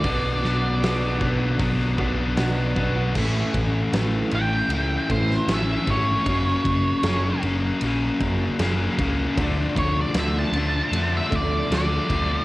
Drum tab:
CC |----------------|x---------------|----------------|----------------|
RD |----------------|--x-x-x-x-x-x-x-|x-x-x-x-x-x-x-x-|x-x-x-x-x-x-x-x-|
HH |o---o---o---o---|----------------|----------------|----------------|
SD |--o-o-------o---|----o------oo---|----o-------o---|----o-------o---|
BD |o-----o-o-o---o-|o-o-------o---o-|o-o-------o---o-|o-o-------o---o-|